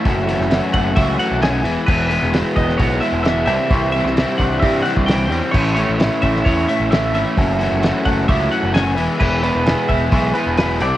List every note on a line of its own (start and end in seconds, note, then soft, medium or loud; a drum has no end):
0.00 1.19 F#2 medium
0.00 1.61 A4 medium
0.00 0.73 E5 loud
0.00 1.61 C#6 medium
0.00 8.92 E6 medium
0.05 0.34 F#1 loud
0.05 0.50 F#3 medium
0.05 0.30 A3 medium
0.05 0.28 C#4 loud
0.05 0.27 F#4 loud
0.05 1.62 F#5 medium
0.05 kick loud
0.05 open hi-hat medium
0.27 1.19 E3 medium
0.27 0.52 C#4 medium
0.27 0.54 F#4 medium
0.27 open hi-hat medium
0.31 0.51 A3 medium
0.39 0.59 F#1 medium
0.39 snare soft
0.50 0.94 F#3 medium
0.50 0.96 A3 medium
0.50 0.97 C#4 medium
0.50 0.96 E4 medium
0.50 snare loud
0.50 open hi-hat medium
0.54 0.98 F#4 medium
0.73 0.93 F#1 medium
0.73 1.65 A3 medium
0.73 0.95 F#5 loud
0.73 kick medium
0.73 open hi-hat medium
0.96 1.16 C#2 loud
0.96 1.40 F#3 medium
0.96 1.20 A3 loud
0.96 1.19 C#4 medium
0.96 2.33 E4 medium
0.96 1.17 F#4 loud
0.96 1.19 E5 loud
0.96 kick loud
0.96 open hi-hat medium
1.18 1.65 E3 medium
1.18 1.41 A3 medium
1.18 1.42 C#4 medium
1.18 1.44 F#4 medium
1.18 1.42 F#5 loud
1.18 open hi-hat medium
1.31 1.66 B1 medium
1.41 1.65 C#3 medium
1.41 1.63 F#3 medium
1.41 1.64 A3 medium
1.41 1.64 C#4 medium
1.41 1.63 F#4 medium
1.41 1.74 G#5 loud
1.41 snare loud
1.41 open hi-hat medium
1.63 1.75 E1 medium
1.63 1.89 E3 medium
1.63 1.87 G#3 medium
1.63 1.88 B3 medium
1.63 1.90 E4 loud
1.63 3.45 G#4 medium
1.63 3.45 F#5 medium
1.63 3.46 B5 medium
1.63 open hi-hat medium
1.67 1.87 E3 medium
1.86 2.17 E1 loud
1.86 2.32 E3 medium
1.86 3.25 E3 medium
1.86 2.11 G#3 medium
1.86 2.09 B3 loud
1.86 2.07 B4 loud
1.86 kick loud
1.86 crash loud
1.90 2.09 E4 loud
2.08 3.02 G#3 medium
2.08 2.34 B3 medium
2.08 2.35 E4 medium
2.08 2.57 B4 loud
2.08 open hi-hat medium
2.13 2.33 G#3 medium
2.23 2.42 E1 medium
2.23 snare soft
2.32 2.78 E3 medium
2.32 2.78 G#3 medium
2.32 2.79 B3 medium
2.32 2.81 E4 medium
2.32 2.79 F#4 medium
2.32 snare loud
2.32 open hi-hat medium
2.56 2.76 E1 medium
2.56 3.48 B3 medium
2.56 2.80 D#5 loud
2.56 kick medium
2.56 open hi-hat medium
2.69 snare soft
2.78 2.99 B1 loud
2.78 3.24 E3 medium
2.78 3.03 G#3 loud
2.78 3.02 B3 loud
2.78 3.00 E4 loud
2.78 3.48 F#4 medium
2.78 3.02 C#5 loud
2.78 kick loud
2.78 open hi-hat medium
3.00 3.49 G#3 medium
3.00 3.25 B3 medium
3.00 3.27 E4 medium
3.00 3.22 E5 loud
3.00 open hi-hat medium
3.05 3.24 G#3 medium
3.13 3.47 E1 medium
3.23 3.49 E3 medium
3.23 4.41 E3 medium
3.23 3.47 G#3 medium
3.23 3.47 B3 medium
3.23 3.45 E5 loud
3.23 snare loud
3.23 open hi-hat medium
3.28 3.47 E4 medium
3.46 3.57 C2 medium
3.46 3.70 C3 medium
3.46 3.71 E3 medium
3.46 3.71 G3 medium
3.46 3.72 C4 loud
3.46 3.74 E4 medium
3.46 5.53 G4 medium
3.46 5.52 D5 medium
3.46 3.91 E5 loud
3.46 5.53 C6 medium
3.46 open hi-hat medium
3.50 3.69 C3 medium
3.70 4.00 C2 loud
3.70 4.17 C3 medium
3.70 4.85 C3 medium
3.70 4.16 E3 loud
3.70 3.96 G3 loud
3.70 3.94 C4 loud
3.70 3.93 E4 loud
3.70 kick loud
3.70 open hi-hat medium
3.92 4.82 G3 medium
3.92 4.17 C4 medium
3.92 4.19 E4 medium
3.92 4.37 E5 loud
3.92 open hi-hat medium
3.97 4.16 G3 medium
4.04 4.24 C2 medium
4.04 snare soft
4.16 4.63 E3 medium
4.16 4.63 G3 medium
4.16 4.64 C4 medium
4.16 4.61 E4 medium
4.16 4.65 E4 medium
4.16 snare loud
4.16 open hi-hat medium
4.38 4.59 C2 medium
4.38 5.53 D4 medium
4.38 4.59 F#5 medium
4.38 kick medium
4.38 open hi-hat medium
4.60 4.82 G2 loud
4.60 5.08 C3 medium
4.60 5.07 E3 loud
4.60 5.99 E4 medium
4.60 4.82 E5 loud
4.60 kick loud
4.60 open hi-hat medium
4.64 4.87 G3 medium
4.64 4.86 C4 loud
4.64 4.84 E4 loud
4.82 5.29 G3 medium
4.82 5.10 E4 medium
4.82 5.06 F#5 loud
4.82 open hi-hat medium
4.87 5.08 G3 medium
4.87 5.09 C4 medium
4.97 5.31 C2 medium
4.97 kick medium
5.06 5.53 E3 medium
5.06 6.92 E3 medium
5.06 5.32 G3 medium
5.06 5.30 C4 medium
5.06 5.39 G5 loud
5.06 snare loud
5.06 open hi-hat medium
5.11 5.29 E4 medium
5.30 5.40 E2 medium
5.30 5.53 G3 medium
5.30 5.53 C4 medium
5.30 5.55 E4 medium
5.30 open hi-hat medium
5.51 5.83 A1 loud
5.51 5.99 A2 medium
5.51 6.68 A2 medium
5.51 5.98 E3 medium
5.51 5.78 A3 loud
5.51 5.77 C#4 loud
5.51 5.73 C#5 loud
5.51 7.36 E5 medium
5.51 kick loud
5.51 crash loud
5.55 5.75 E4 medium
5.55 8.95 A4 medium
5.55 8.95 C#6 medium
5.75 6.68 A3 medium
5.75 6.00 C#4 medium
5.75 6.01 E4 medium
5.75 6.23 C#5 loud
5.75 open hi-hat medium
5.79 5.99 A3 medium
5.89 6.08 A1 medium
5.98 6.45 E3 medium
5.98 6.45 A3 medium
5.98 6.46 C#4 medium
5.98 6.46 E4 medium
5.98 6.48 E4 medium
5.98 snare loud
5.98 open hi-hat medium
6.22 6.42 A1 medium
6.22 7.37 C#4 medium
6.22 6.46 E5 medium
6.22 kick medium
6.22 open hi-hat medium
6.36 snare soft
6.45 6.65 E2 loud
6.45 6.91 A2 loud
6.45 6.90 E3 loud
6.45 6.70 A3 medium
6.45 6.68 C#4 medium
6.45 7.39 E4 medium
6.45 6.67 E4 loud
6.45 6.69 C#5 medium
6.45 kick loud
6.45 open hi-hat medium
6.68 7.13 A3 medium
6.68 6.91 A3 medium
6.68 6.92 C#4 medium
6.68 6.94 E4 medium
6.68 6.90 E5 medium
6.68 open hi-hat medium
6.80 7.14 A1 medium
6.90 7.36 E3 medium
6.90 7.39 E3 medium
6.90 7.15 A3 medium
6.90 7.14 C#4 medium
6.90 7.12 E4 medium
6.90 7.14 E5 loud
6.90 snare loud
6.90 open hi-hat medium
7.13 7.24 G#1 medium
7.13 7.37 A3 medium
7.13 7.36 A3 medium
7.13 7.36 C#4 medium
7.13 7.39 E4 medium
7.13 8.05 E5 loud
7.13 open hi-hat medium
7.36 7.67 F#1 loud
7.36 8.51 F#2 medium
7.36 7.82 F#3 medium
7.36 7.61 A3 medium
7.36 7.60 C#4 loud
7.36 7.58 F#4 loud
7.36 10.78 F#5 medium
7.36 kick loud
7.36 open hi-hat medium
7.59 8.50 E3 medium
7.59 7.83 A3 medium
7.59 7.84 C#4 medium
7.59 7.85 F#4 medium
7.59 open hi-hat medium
7.72 7.91 F#1 medium
7.81 8.27 F#3 medium
7.81 8.29 A3 medium
7.81 8.29 C#4 medium
7.81 8.28 E4 medium
7.81 snare loud
7.81 open hi-hat medium
7.86 8.31 F#4 medium
8.04 8.25 F#1 medium
8.04 8.97 A3 medium
8.04 8.28 F#5 medium
8.04 kick medium
8.04 open hi-hat medium
8.28 8.48 C#2 loud
8.28 8.73 F#3 medium
8.28 8.53 A3 medium
8.28 8.52 C#4 loud
8.28 9.88 E4 medium
8.28 8.50 F#4 loud
8.28 8.51 E5 loud
8.28 kick loud
8.28 open hi-hat medium
8.51 8.96 E3 medium
8.51 8.74 A3 medium
8.51 8.76 C#4 medium
8.51 8.77 F#4 medium
8.51 8.74 F#5 medium
8.51 open hi-hat medium
8.63 8.97 F#1 medium
8.74 8.96 C#3 medium
8.74 8.96 F#3 medium
8.74 8.97 A3 medium
8.74 8.97 C#4 medium
8.74 9.06 G#5 loud
8.74 snare loud
8.74 open hi-hat medium
8.78 8.96 F#4 medium
8.96 9.07 E1 medium
8.96 9.18 E3 medium
8.96 9.20 G#3 medium
8.96 9.21 B3 medium
8.96 9.22 E4 loud
8.96 10.79 G#4 medium
8.96 10.79 B5 medium
8.96 10.79 E6 medium
8.96 open hi-hat medium
9.19 9.50 E1 loud
9.19 10.34 E3 medium
9.19 9.65 E3 medium
9.19 9.45 G#3 loud
9.19 9.43 B3 loud
9.19 9.42 B4 loud
9.19 kick loud
9.19 crash loud
9.23 9.42 E4 loud
9.43 9.66 G#3 medium
9.43 10.33 B3 medium
9.43 9.67 B3 medium
9.43 9.68 E4 medium
9.43 9.91 B4 medium
9.43 open hi-hat medium
9.55 9.74 E1 medium
9.66 10.11 E3 medium
9.66 10.12 G#3 medium
9.66 10.13 B3 medium
9.66 10.14 E4 medium
9.66 10.10 G#4 medium
9.66 snare loud
9.66 open hi-hat medium
9.88 10.09 E1 medium
9.88 10.80 E4 medium
9.88 10.32 E5 medium
9.88 kick medium
9.88 open hi-hat medium
10.11 10.32 B1 loud
10.11 10.57 E3 medium
10.11 10.37 G#3 loud
10.11 10.36 B3 medium
10.11 10.80 G#4 medium
10.11 kick loud
10.11 open hi-hat loud
10.15 10.34 E4 loud
10.34 10.80 B3 medium
10.34 10.59 B3 medium
10.34 10.60 E4 medium
10.34 10.57 B4 medium
10.34 open hi-hat medium
10.38 10.58 G#3 medium
10.47 10.82 E1 medium
10.57 10.79 E3 medium
10.57 10.80 F#3 medium
10.57 10.80 G#3 medium
10.57 10.81 B4 medium
10.57 snare loud
10.57 open hi-hat medium
10.61 10.81 B3 medium
10.61 10.80 E4 medium
10.79 10.91 C2 medium
10.79 10.97 C3 medium
10.79 10.97 C4 medium
10.79 10.97 E4 medium
10.79 10.97 G4 medium
10.79 10.97 D5 medium
10.79 10.97 E5 medium
10.79 10.97 C6 medium
10.79 10.97 D6 medium
10.79 open hi-hat medium
10.83 10.97 C3 medium
10.83 10.97 G3 medium